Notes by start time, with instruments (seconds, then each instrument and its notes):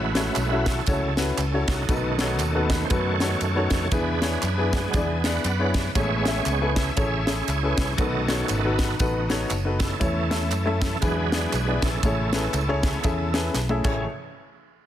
Already playing: fingered electric bass A1, upright piano A2, tonewheel organ G#3 A3 E4 F#4 B4
0.15 upright piano C#4 E4 F#4 A4 C#5, snare, ride bell, tambourine
0.36 fingered electric bass B1, clap, ride bell, tambourine
0.51 upright piano C#4 E4 F#4 A4 E5
0.65 tonewheel organ C#4 E4 A4, kick, snare, ride bell, tambourine
0.86 fingered electric bass C#2, tonewheel organ G#3 A3 E4, upright piano C#4 E4 F#4 A4 C#5, kick, ride bell, tambourine
1.17 upright piano C#4 E4 F#4 A4 B4, snare, ride bell, tambourine
1.38 fingered electric bass C#2, clap, ride bell, tambourine
1.53 upright piano C#4 E4 F#4 A4 C#5
1.68 fingered electric bass C2, tonewheel organ D#4 F#4 A4, kick, snare, ride bell, tambourine
1.87 fingered electric bass B1, upright piano B2 B3 D#4 F#4 A4 B4, tonewheel organ D#3 A3 C#4, kick, ride bell, tambourine
2.19 upright piano B3 D#4 F#4 A4 C#5, snare, ride bell, tambourine
2.39 fingered electric bass D#2, clap, ride bell, tambourine
2.55 upright piano B3 D#4 F#4 A4 B4
2.70 tonewheel organ B4, kick, snare, ride bell, tambourine
2.84 tonewheel organ C5
2.90 fingered electric bass F#2, upright piano B3 D#4 F#4 A4 B4, tonewheel organ F#4 A4 C#5, kick, ride bell, tambourine
3.20 upright piano B3 D#4 F#4 A4 C#5, snare, ride bell, tambourine
3.41 fingered electric bass F#2, clap, ride bell, tambourine
3.55 upright piano B3 D#4 F#4 A4 C#5
3.70 fingered electric bass F2, kick, snare, ride bell, tambourine
3.91 fingered electric bass E2, upright piano E3 B3 D4 E4 G#4 B4, tonewheel organ D4 G#4 B4, kick, ride bell, tambourine
4.21 upright piano B3 D4 E4 G#4 C#5, snare, ride bell, tambourine
4.42 fingered electric bass F#2, clap, ride bell, tambourine
4.58 upright piano B3 D4 E4 G#4 B4
4.73 tonewheel organ F#3 G#3 B3 D4 G#4, kick, snare, ride bell, tambourine
4.93 fingered electric bass E2, upright piano B3 D4 E4 G#4 D5, kick, ride bell, tambourine
5.24 upright piano B3 D4 E4 G#4 D5, tonewheel organ B4 D5 F#5, snare, ride bell, tambourine
5.44 fingered electric bass F#2, clap, ride bell, tambourine
5.59 upright piano B3 D4 E4 G#4 C#5
5.74 kick, snare, ride bell, tambourine
5.95 fingered electric bass A1, upright piano A2 C#4 E4 G#4 A4 C#5, tonewheel organ G#3 B3 C#4 G#4 C#5 E5, kick, ride bell, tambourine
6.25 upright piano C#4 E4 G#4 A4 E5, snare, ride bell, tambourine
6.46 fingered electric bass C#2, clap, ride bell, tambourine
6.61 upright piano C#4 E4 G#4 A4 B4
6.76 tonewheel organ E5, kick, snare, ride bell, tambourine
6.96 fingered electric bass A1, upright piano C#4 E4 G#4 A4 C#5, tonewheel organ G#4 C#5 E5, kick, ride bell, tambourine
7.26 upright piano C#4 E4 G#4 A4 E5, tonewheel organ E4 G#4 C#5, snare, ride bell, tambourine
7.48 fingered electric bass C#2, clap, ride bell, tambourine
7.63 upright piano C#4 E4 G#4 A4 B4
7.77 kick, snare, ride bell, tambourine
7.96 fingered electric bass B1, upright piano B2 B3 D#4 F#4 A4 B4, tonewheel organ D#3 A3 C#4 F#4 A4 D#5, kick, ride bell, tambourine
8.28 upright piano B3 D#4 F#4 A4 C#5, tonewheel organ C#5, snare, ride bell, tambourine
8.49 fingered electric bass G#1, tonewheel organ D#4 F#4 B4, clap, ride bell, tambourine
8.64 upright piano B3 D#4 F#4 A4 B4
8.79 kick, snare, ride bell, tambourine
8.99 fingered electric bass A1, upright piano B3 D#4 F#4 A4 B4, kick, ride bell, tambourine
9.28 tonewheel organ D#3 A3 C#4, upright piano B3 D#4 F#4 A4 C#5, snare, ride bell, tambourine
9.50 fingered electric bass F#1, clap, ride bell, tambourine
9.65 upright piano B3 D#4 F#4 A4 B4
9.79 tonewheel organ C#4 E4 A4, kick, snare, ride bell, tambourine
9.99 fingered electric bass E2, tonewheel organ E3 A3 C#4, upright piano E3 A3 C#4 E4 A4 C#5, kick, ride bell, tambourine
10.31 upright piano A3 C#4 E4 A4 E5, snare, ride bell, tambourine
10.51 fingered electric bass F#2, clap, ride bell, tambourine
10.66 upright piano A3 C#4 E4 A4 E5
10.82 kick, snare, ride bell, tambourine
11.01 fingered electric bass E2, upright piano E3 B3 D4 E4 G#4 B4, tonewheel organ F#3 G#3 D4 G#4 B4, kick, ride bell, tambourine
11.32 upright piano B3 D4 E4 G#4 D5, snare, ride bell, tambourine
11.52 fingered electric bass B1, clap, ride bell, tambourine
11.67 upright piano B3 D4 E4 G#4 D5
11.82 fingered electric bass A#1, tonewheel organ C#4 E4 A4, kick, snare, ride bell, tambourine
12.03 fingered electric bass A1, upright piano A2 C#4 E4 G#4 A4 C#5, kick, ride bell, tambourine
12.33 upright piano C#4 E4 G#4 A4 B4, snare, ride bell, tambourine
12.54 fingered electric bass C#2, clap, ride bell, tambourine
12.68 upright piano C#4 E4 G#4 A4 C#5
12.83 tonewheel organ B3 C#4 G#4, kick, snare, ride bell, tambourine
13.03 fingered electric bass E2, upright piano C#4 E4 G#4 A4 E5, kick, ride bell, tambourine
13.34 upright piano C#4 E4 G#4 A4 B4, snare, ride bell, tambourine
13.54 fingered electric bass B1, snare, clap, tambourine
13.69 upright piano C#4 E4 G#4 A4 E5, high tom
13.84 fingered electric bass A1, upright piano A1 E4 G#4 A4 C#5, tonewheel organ E3 A3 C#4 G#4, kick, clap, crash